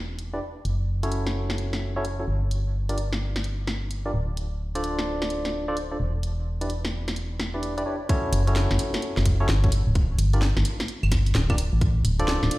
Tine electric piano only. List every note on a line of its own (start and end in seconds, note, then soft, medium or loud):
0.33 0.38 D4 medium
0.33 0.38 E4 medium
0.33 0.38 G4 medium
0.33 0.38 B4 medium
0.33 0.38 D5 medium
1.03 1.93 C#4 medium
1.03 1.93 E4 medium
1.03 1.93 F#4 medium
1.03 1.93 A4 medium
1.03 1.93 C#5 medium
1.96 2.04 C#4 medium
1.96 2.04 E4 medium
1.96 2.04 F#4 medium
1.96 2.04 A4 medium
1.96 2.04 C#5 medium
2.19 2.24 C#4 medium
2.19 2.24 E4 medium
2.19 2.24 F#4 medium
2.19 2.24 A4 medium
2.19 2.24 C#5 medium
2.89 2.97 D4 medium
2.89 2.97 F4 medium
2.89 2.97 G4 medium
2.89 2.97 A#4 medium
2.89 2.97 D5 medium
4.05 4.10 D4 medium
4.05 4.10 F4 medium
4.05 4.10 G4 medium
4.05 4.10 A#4 medium
4.05 4.10 D5 medium
4.75 5.65 D4 medium
4.75 5.65 F4 medium
4.75 5.65 A4 medium
4.75 5.65 C5 medium
4.75 5.65 D5 loud
5.68 5.76 D4 medium
5.68 5.76 F4 medium
5.68 5.76 A4 medium
5.68 5.76 C5 medium
5.68 5.76 D5 loud
5.92 5.96 D4 medium
5.92 5.96 F4 medium
5.92 5.96 A4 medium
5.92 5.96 C5 medium
5.92 5.96 D5 medium
6.61 6.69 D4 medium
6.61 6.69 E4 medium
6.61 6.69 G4 medium
6.61 6.69 B4 medium
6.61 6.69 D5 medium
7.54 7.74 D4 medium
7.54 7.74 E4 medium
7.54 7.74 G4 medium
7.54 7.74 B4 medium
7.54 7.74 D5 medium
7.78 7.82 D4 medium
7.78 7.82 E4 medium
7.78 7.82 G4 medium
7.78 7.82 B4 medium
7.78 7.82 D5 medium
7.86 7.94 D4 medium
7.86 7.94 E4 medium
7.86 7.94 G4 medium
7.86 7.94 B4 medium
7.86 7.94 C#5 medium
8.09 8.41 C#4 loud
8.09 8.41 E4 medium
8.09 8.41 F#4 medium
8.09 8.41 A4 medium
8.09 8.41 C#5 loud
8.47 9.37 C#4 loud
8.47 9.37 E4 medium
8.47 9.37 F#4 medium
8.47 9.37 A4 medium
8.47 9.37 C#5 loud
9.40 9.48 C#4 loud
9.40 9.48 E4 medium
9.40 9.48 F#4 medium
9.40 9.48 A4 medium
9.40 9.48 C#5 loud
9.64 9.68 C#4 medium
9.64 9.68 E4 medium
9.64 9.68 F#4 medium
9.64 9.68 A4 medium
9.64 9.68 C#5 medium
10.33 10.41 D4 medium
10.33 10.41 F4 medium
10.33 10.41 G4 medium
10.33 10.41 A#4 medium
10.33 10.41 D5 medium
11.50 11.55 D4 medium
11.50 11.55 F4 medium
11.50 11.55 G4 medium
11.50 11.55 A#4 medium
11.50 11.55 D5 loud
12.20 12.59 D4 medium
12.20 12.59 F4 medium
12.20 12.59 A4 medium
12.20 12.59 C5 medium
12.20 12.59 D5 loud